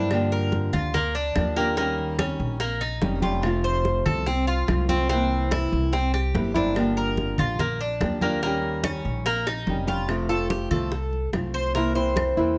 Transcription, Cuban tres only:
0.00 0.30 D4 medium
0.32 0.72 A#4 medium
0.73 0.93 F4 medium
0.94 1.14 A#3 medium
1.15 1.55 D4 medium
1.56 1.76 A#3 medium
1.77 2.18 A#3 medium
2.19 2.59 C#4 medium
2.60 2.80 A#3 medium
2.81 3.21 D#4 medium
3.23 3.63 F4 medium
3.64 4.05 C5 medium
4.06 4.26 A4 medium
4.27 4.47 C4 medium
4.47 4.88 F4 medium
4.89 5.08 C4 medium
5.09 5.50 C4 medium
5.51 5.92 E4 medium
5.93 6.13 C4 medium
6.14 6.54 G4 medium
6.56 6.96 D4 medium
6.97 7.37 A#4 medium
7.39 7.59 F4 medium
7.60 7.80 A#3 medium
7.81 8.21 D4 medium
8.22 8.41 A#3 medium
8.43 8.83 A#3 medium
8.84 9.24 C#4 medium
9.26 9.46 A#3 medium
9.47 9.87 D#4 medium
9.88 10.08 F4 medium
10.29 10.49 A4 medium
10.50 10.70 G4 medium
10.71 11.29 A4 medium
11.54 11.74 C5 medium
11.75 11.95 A#4 medium
11.95 12.54 C5 medium

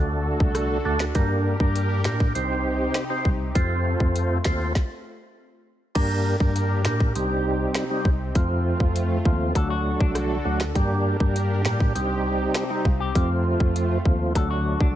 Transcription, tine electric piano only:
0.00 0.32 D2 loud
0.40 0.77 C2 medium
0.85 1.10 D2 medium
1.15 1.52 G2 loud
1.60 2.05 G2 loud
2.05 2.30 A2 medium
2.35 2.85 C2 loud
3.25 3.50 C2 loud
3.55 3.92 F2 loud
4.00 4.38 F2 medium
4.45 4.70 D#2 medium
5.96 6.33 G2 loud
6.40 6.85 G2 loud
6.85 7.10 A2 medium
7.16 7.65 C2 loud
8.05 8.30 C2 loud
8.35 8.72 F2 loud
8.80 9.17 F2 medium
9.25 9.50 D#2 loud
9.55 9.92 D2 loud
10.01 10.38 C2 medium
10.45 10.70 D2 medium
10.75 11.13 G2 loud
11.20 11.65 G2 loud
11.65 11.90 A2 medium
11.95 12.45 C2 loud
12.85 13.10 C2 loud
13.15 13.53 F2 loud
13.60 13.97 F2 medium
14.06 14.30 D#2 medium
14.35 14.73 D2 loud
14.80 14.96 C2 medium

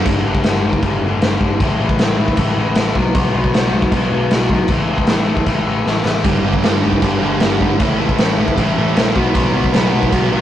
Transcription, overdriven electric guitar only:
0.07 0.25 G2 medium
0.07 0.26 D3 loud
0.07 0.26 G3 loud
0.26 0.46 G2 medium
0.26 0.46 D3 medium
0.26 0.47 G3 medium
0.47 0.64 G2 medium
0.47 0.65 D3 medium
0.47 0.66 G3 medium
0.66 0.84 G2 medium
0.66 0.85 D3 medium
0.66 0.84 G3 medium
0.85 1.04 G2 medium
0.85 1.06 D3 medium
0.85 1.06 G3 loud
1.06 1.23 G2 medium
1.06 1.24 D3 medium
1.06 1.24 G3 medium
1.24 1.42 G2 medium
1.24 1.43 D3 medium
1.24 1.43 G3 medium
1.43 1.61 G2 medium
1.43 1.61 D3 medium
1.43 1.61 G3 medium
1.62 1.80 A2 medium
1.62 1.81 E3 loud
1.62 1.81 A3 loud
1.81 1.98 A2 medium
1.81 2.00 E3 medium
1.81 2.00 A3 loud
1.99 2.18 A2 medium
1.99 2.19 E3 medium
1.99 2.19 A3 loud
2.19 2.38 A2 medium
2.19 2.38 E3 loud
2.19 2.39 A3 loud
2.39 2.57 A2 medium
2.39 2.58 E3 loud
2.39 2.58 A3 loud
2.58 2.77 A2 medium
2.58 2.77 E3 medium
2.58 2.78 A3 medium
2.79 2.96 A2 medium
2.79 2.96 E3 medium
2.79 2.96 A3 medium
2.96 3.14 B2 loud
2.96 3.15 F#3 medium
2.96 3.16 B3 loud
3.16 3.36 B2 medium
3.16 3.36 F#3 loud
3.16 3.36 B3 medium
3.37 3.53 B2 medium
3.37 3.53 F#3 medium
3.37 3.54 B3 loud
3.54 3.73 B2 medium
3.54 3.73 F#3 medium
3.54 3.73 B3 loud
3.74 3.92 B2 loud
3.74 3.92 F#3 medium
3.74 3.93 B3 loud
3.93 4.11 B2 loud
3.93 4.12 F#3 loud
3.93 4.12 B3 loud
4.12 4.31 B2 medium
4.12 4.31 F#3 medium
4.12 4.32 B3 medium
4.32 4.51 B2 medium
4.32 4.52 F#3 medium
4.32 4.52 B3 medium
4.52 4.69 B2 medium
4.52 4.70 F#3 medium
4.52 4.70 B3 loud
4.70 4.89 A2 medium
4.70 4.91 E3 loud
4.70 4.90 A3 medium
4.91 5.08 A2 medium
4.91 5.09 E3 medium
4.91 5.09 A3 medium
5.09 5.25 A2 medium
5.09 5.26 E3 medium
5.09 5.26 A3 medium
5.26 5.45 A2 medium
5.26 5.46 E3 medium
5.26 5.47 A3 medium
5.47 5.65 A2 medium
5.47 5.65 E3 medium
5.47 5.66 A3 loud
5.66 5.84 A2 medium
5.66 5.85 E3 medium
5.66 5.86 A3 medium
5.86 6.04 A2 medium
5.86 6.04 E3 medium
5.86 6.05 A3 medium
6.05 6.24 A2 medium
6.05 6.24 E3 medium
6.05 6.24 A3 medium
6.24 6.43 G2 medium
6.24 6.43 D3 medium
6.24 6.44 G3 medium
6.44 6.62 G2 medium
6.44 6.62 D3 medium
6.44 6.63 G3 medium
6.63 6.82 G2 medium
6.63 6.83 D3 medium
6.63 6.84 G3 medium
6.83 7.02 G2 medium
6.83 7.03 D3 medium
6.83 7.03 G3 loud
7.03 7.21 G2 loud
7.03 7.21 D3 loud
7.03 7.22 G3 loud
7.22 7.40 G2 medium
7.22 7.40 D3 medium
7.22 7.41 G3 medium
7.41 7.59 G2 medium
7.41 7.59 D3 medium
7.41 7.60 G3 medium
7.60 7.79 G2 medium
7.60 7.79 D3 medium
7.60 7.79 G3 medium
7.79 7.97 A2 medium
7.79 7.98 E3 loud
7.79 7.98 A3 loud
7.98 8.17 A2 medium
7.98 8.18 E3 medium
7.98 8.19 A3 medium
8.18 8.37 A2 medium
8.18 8.38 E3 medium
8.18 8.39 A3 medium
8.39 8.56 A2 medium
8.39 8.58 E3 medium
8.39 8.58 A3 medium
8.58 8.76 A2 medium
8.58 8.77 E3 loud
8.58 8.77 A3 loud
8.77 8.95 A2 medium
8.77 8.96 E3 medium
8.77 8.96 A3 loud
8.96 9.15 A2 medium
8.96 9.15 E3 medium
8.96 9.15 A3 medium
9.15 9.34 B2 medium
9.15 9.33 F#3 medium
9.15 9.34 B3 medium
9.35 9.54 B2 medium
9.35 9.55 F#3 loud
9.35 9.55 B3 medium
9.55 9.71 B2 medium
9.55 9.72 F#3 medium
9.55 9.73 B3 medium
9.73 9.91 B2 medium
9.73 9.91 F#3 medium
9.73 9.92 B3 loud
9.92 10.10 B2 medium
9.92 10.10 F#3 medium
9.92 10.11 B3 medium
10.11 10.30 B2 medium
10.11 10.30 F#3 medium
10.11 10.31 B3 loud
10.31 10.41 B2 medium
10.31 10.41 F#3 medium
10.31 10.41 B3 medium

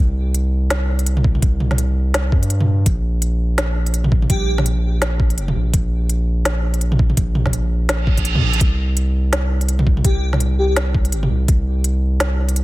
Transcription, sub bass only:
0.00 1.41 C2 loud
1.42 2.34 C2 loud
2.32 2.85 G2 medium
2.86 4.29 A#1 loud
4.30 5.39 A#1 loud
5.38 5.54 F1 medium
5.56 5.72 A#1 loud
5.74 7.16 A#1 loud
7.17 8.37 A#1 loud
8.35 8.42 G2 medium
8.43 8.60 A#1 loud
8.61 10.04 C2 loud
10.05 11.14 C2 loud
11.12 11.29 G1 medium
11.30 11.47 C2 loud
11.48 12.64 C2 loud

